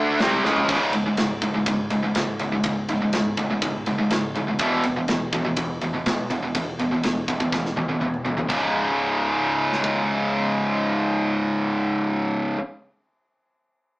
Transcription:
Already playing: picked electric bass D2, distorted electric guitar D3 A3 D4
0.19 picked electric bass C2, distorted electric guitar C3 G3 C4, snare, open hi-hat
0.43 picked electric bass C#2, distorted electric guitar C#3 G#3 C#4, snare
0.56 floor tom
0.68 picked electric bass C#1, distorted electric guitar C#2 G#2 C#3, kick, crash
0.93 picked electric bass C#1, distorted electric guitar C#2 G#2, ride
1.06 distorted electric guitar C#2 G#2
1.17 picked electric bass C#1, distorted electric guitar C#2 G#2, snare, ride
1.42 picked electric bass G#1, distorted electric guitar C#2 G#2, kick, ride
1.54 distorted electric guitar C#2 G#2
1.66 picked electric bass C#1, distorted electric guitar C#2 G#2, kick, ride
1.90 picked electric bass C#1, distorted electric guitar C#2 G#2, ride
2.03 distorted electric guitar C#2 G#2
2.15 picked electric bass G#1, distorted electric guitar C#2 G#2, snare, ride
2.39 picked electric bass C#1, distorted electric guitar C#2 G#2, ride
2.52 distorted electric guitar C#2 G#2
2.63 picked electric bass C#1, distorted electric guitar C#2 G#2, kick, ride
2.88 picked electric bass C#1, distorted electric guitar C#2 G#2, ride
3.01 distorted electric guitar C#2 G#2
3.13 picked electric bass C#1, distorted electric guitar C#2 G#2, snare, ride
3.37 picked electric bass C#1, distorted electric guitar C#2 G#2, kick, ride
3.50 distorted electric guitar C#2 G#2
3.61 picked electric bass C#1, distorted electric guitar C#2 G#2, kick, ride
3.86 picked electric bass G#1, distorted electric guitar C#2 G#2, ride
3.98 distorted electric guitar C#2 G#2
4.10 picked electric bass C#1, distorted electric guitar C#2 G#2, snare, ride
4.35 picked electric bass G#1, distorted electric guitar C#2 G#2, ride
4.47 distorted electric guitar C#2 G#2
4.59 picked electric bass E1, distorted electric guitar E2 B2 E3, kick, ride
4.83 picked electric bass E1, distorted electric guitar E2 B2, ride
4.96 distorted electric guitar E2 B2
5.08 picked electric bass E1, distorted electric guitar E2 B2, snare, ride
5.32 picked electric bass B1, distorted electric guitar E2 B2, kick, ride
5.45 distorted electric guitar E2 B2
5.56 picked electric bass E1, distorted electric guitar E2 B2, kick, ride
5.81 picked electric bass E1, distorted electric guitar E2 B2, ride
5.93 distorted electric guitar E2 B2
6.06 picked electric bass B1, distorted electric guitar E2 B2, snare, ride
6.30 picked electric bass E1, distorted electric guitar E2 B2, ride
6.43 distorted electric guitar E2 B2
6.55 picked electric bass E1, distorted electric guitar E2 B2, kick, ride
6.79 picked electric bass E1, distorted electric guitar E2 B2, ride
6.91 distorted electric guitar E2 B2
7.03 picked electric bass E1, distorted electric guitar E2 B2, snare, ride
7.28 picked electric bass E1, distorted electric guitar E2 B2, kick, ride
7.40 distorted electric guitar E2 B2, kick
7.52 picked electric bass E1, distorted electric guitar E2 B2, kick, snare
7.66 snare
7.76 picked electric bass B1, distorted electric guitar E2 B2, high tom
7.88 distorted electric guitar E2 B2, high tom
8.00 picked electric bass E1, distorted electric guitar E2 B2, mid tom
8.14 mid tom
8.25 picked electric bass B1, distorted electric guitar E2 B2, floor tom
8.37 distorted electric guitar E2 B2, floor tom
8.47 picked electric bass C#1, distorted electric guitar C#2 G#2, kick, crash
8.52 distorted electric guitar C#3
9.73 snare
9.84 kick

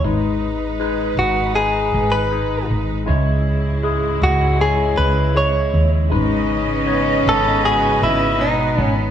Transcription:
0.03 fretless electric bass G#1, tine electric piano G#2 G#3 D#4 B4, string section D#4 B4
0.79 tine electric piano G#3 D#4 B4
1.17 fretless electric bass G#1, clean electric guitar F#4
1.54 tine electric piano G#3 D#4 B4, clean electric guitar G#4
1.94 fretless electric bass G#1
2.12 clean electric guitar B4
2.31 tine electric piano G#3 D#4 G#4
2.70 fretless electric bass G#1
3.06 fretless electric bass C#2, cello section G#2 G#3, tine electric piano C#3 G#3 E4 C#5, string section C#3 G#3 E4
3.83 tine electric piano G#3 E4 G#4
4.22 fretless electric bass C#2, clean electric guitar F#4
4.59 tine electric piano G#3 E4 C#5, clean electric guitar G#4
4.97 fretless electric bass C#2, clean electric guitar B4
5.35 tine electric piano G#3 E4 C#5, clean electric guitar C#5
5.74 fretless electric bass D#2
6.10 fretless electric bass G#1, tine electric piano G#2 G#3 D#4 B4, cello section C#3 C#4, string section B3 B4 D#5
6.86 tine electric piano B3 D#4 C#5
7.26 fretless electric bass G#1, clean electric guitar A4
7.63 tine electric piano G#3 F#4 D#5, clean electric guitar G#4
8.02 fretless electric bass G#1, clean electric guitar E4
8.38 cello section B2 B3, tine electric piano G#3 D#4 G#4, clean electric guitar D#4
8.78 fretless electric bass G#1
8.82 clean electric guitar C#4

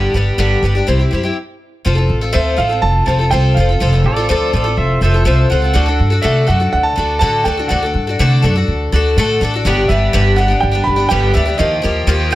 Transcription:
Already playing: twelve-string acoustic guitar G2 D3 G3 B3 D4 G4
0.13 upright bass G1, twelve-string acoustic guitar G3 B3 D4 G4
0.38 upright bass G1, twelve-string acoustic guitar G2 D3 G3 B3 D4 G4
0.62 upright bass G1, twelve-string acoustic guitar G3 B3 D4 G4
0.75 twelve-string acoustic guitar G3 B3 D4 G4
0.87 upright bass C2, twelve-string acoustic guitar C3 G3 C4 E4 G4
0.99 twelve-string acoustic guitar C4 E4 G4
1.11 upright bass F#2, twelve-string acoustic guitar G3 C4 E4 G4
1.23 twelve-string acoustic guitar C4 E4 G4
1.85 upright bass F1, twelve-string acoustic guitar F3 C4 F4 A4
1.95 twelve-string acoustic guitar C4 F4 A4
2.09 upright bass A1
2.21 twelve-string acoustic guitar C4 F4 A4
2.33 upright bass D2, twelve-string acoustic guitar F3 C4 F4 A4, grand piano E5
2.57 upright bass A1, twelve-string acoustic guitar F3 C4 F4 A4, grand piano F5
2.69 twelve-string acoustic guitar C4 F4 A4
2.82 upright bass F1, grand piano A5
3.06 upright bass F1, twelve-string acoustic guitar F3 C4 F4 A4, grand piano A5
3.19 twelve-string acoustic guitar C4 F4 A4
3.31 upright bass C2, twelve-string acoustic guitar F3 C4 F4 A4, grand piano G5
3.54 upright bass F1, twelve-string acoustic guitar F3 C4, grand piano F5
3.59 twelve-string acoustic guitar F4 A4
3.69 twelve-string acoustic guitar C4 F4 A4
3.80 upright bass F1, twelve-string acoustic guitar F3 C4 F4 A4
3.93 twelve-string acoustic guitar C4 F4 A4
4.04 upright bass A1, pedal steel guitar A4 D5
4.16 twelve-string acoustic guitar C4 F4 A4
4.29 upright bass D2, twelve-string acoustic guitar F3 C4 F4 A4, pedal steel guitar A4 D5
4.53 upright bass A1, twelve-string acoustic guitar F3 C4 F4 A4, pedal steel guitar A4 D5
4.64 twelve-string acoustic guitar C4 F4 A4
4.77 upright bass F1, pedal steel guitar C5 E5
5.01 upright bass F1, twelve-string acoustic guitar F3 C4 F4 A4, pedal steel guitar C5 E5
5.14 twelve-string acoustic guitar C4 F4 A4
5.25 upright bass C2, twelve-string acoustic guitar F3 C4 F4 A4, pedal steel guitar C5 E5
5.50 upright bass C#2, twelve-string acoustic guitar F3 C4 F4 A4, pedal steel guitar F#5
5.62 twelve-string acoustic guitar C4 F4 A4
5.74 upright bass D2, twelve-string acoustic guitar D3 A3 D4 F#4 A4
5.86 twelve-string acoustic guitar D4 F#4 A4
6.00 upright bass G2
6.10 twelve-string acoustic guitar D4 F#4 A4
6.22 upright bass C3, twelve-string acoustic guitar D3 A3 D4 F#4 A4, grand piano E5
6.47 upright bass F#2, twelve-string acoustic guitar A3 D4 F#4 A4, grand piano F#5
6.60 twelve-string acoustic guitar D4 F#4 A4
6.73 upright bass D2, grand piano F#5
6.83 grand piano A5
6.96 upright bass D2, twelve-string acoustic guitar A3 D4 F#4 A4
7.19 upright bass A2, twelve-string acoustic guitar D3 A3 D4 F#4, grand piano A5
7.23 twelve-string acoustic guitar A4
7.44 upright bass D2, twelve-string acoustic guitar A3 D4 F#4 A4, grand piano G5
7.57 twelve-string acoustic guitar D4 F#4 A4
7.68 upright bass D2, twelve-string acoustic guitar D3 A3 D4 F#4 A4, grand piano F#5
7.83 twelve-string acoustic guitar D4 F#4 A4
7.94 upright bass G2
8.07 twelve-string acoustic guitar D4 F#4 A4
8.19 upright bass C3, twelve-string acoustic guitar D3 A3 D4 F#4 A4
8.42 upright bass F#2, twelve-string acoustic guitar A3 D4 F#4 A4
8.56 twelve-string acoustic guitar D4 F#4 A4
8.68 upright bass D2
8.92 upright bass D2, twelve-string acoustic guitar A3 D4 F#4 A4
9.17 upright bass A2, twelve-string acoustic guitar D3 A3 D4 F#4 A4
9.41 upright bass A1, twelve-string acoustic guitar A3 D4 F#4 A4
9.54 twelve-string acoustic guitar D4 F#4 A4
9.65 upright bass G1, twelve-string acoustic guitar G2 D3 G3 B3 D4 G4
9.88 upright bass G1, twelve-string acoustic guitar G3 B3 D4 G4, grand piano E5
10.13 upright bass G1, twelve-string acoustic guitar G2 D3 G3 B3 D4 G4
10.36 twelve-string acoustic guitar G3 B3 D4 G4, grand piano F#5
10.48 twelve-string acoustic guitar G3 B3 D4 G4
10.60 upright bass G1, grand piano G5
10.72 twelve-string acoustic guitar G3 B3 D4 G4
10.84 upright bass G1, grand piano B5
10.96 twelve-string acoustic guitar G3 B3 D4 G4
11.09 upright bass G1, twelve-string acoustic guitar G2 D3 G3 B3 D4 G4, grand piano G5
11.34 upright bass D2, twelve-string acoustic guitar G3 B3 D4 G4, grand piano E5
11.46 twelve-string acoustic guitar G3 B3 D4 G4
11.58 upright bass D#2, twelve-string acoustic guitar D#3 F3 A#3 F4 G4, grand piano D#5
11.82 upright bass D#2, twelve-string acoustic guitar F3 A#3 F4 G4
12.07 upright bass D#2, twelve-string acoustic guitar D#3 F3 A#3 F4 G4
12.30 twelve-string acoustic guitar F3 A#3

